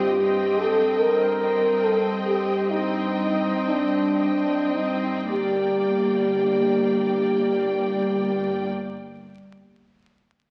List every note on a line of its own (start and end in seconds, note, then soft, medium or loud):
0.00 0.56 G1 soft
0.00 0.85 G2 medium
0.00 0.20 C4 soft
0.00 0.60 G4 medium
0.00 0.21 D#5 soft
0.00 0.20 G5 soft
0.21 1.38 C4 soft
0.21 1.38 D#5 soft
0.21 1.38 G5 soft
0.60 0.99 A4 medium
0.99 2.10 G2 soft
0.99 1.82 A#4 medium
1.41 2.68 C4 soft
1.41 2.68 D#5 soft
1.41 2.68 G5 soft
1.83 2.12 A4 medium
2.25 3.48 G2 soft
2.25 2.69 G4 medium
2.70 4.15 C4 soft
2.70 3.65 D#4 medium
2.70 4.15 D#5 soft
2.70 4.14 G5 soft
3.66 5.11 G2 soft
3.66 4.75 D4 soft
4.16 5.27 C4 soft
4.16 5.28 D#5 soft
4.16 5.29 G5 soft
4.73 5.29 D#4 soft
5.29 8.66 G1 soft
5.29 8.67 G2 soft
5.29 8.65 A#3 soft
5.29 8.66 G4 soft
5.29 8.67 D5 soft
5.29 8.67 G5 soft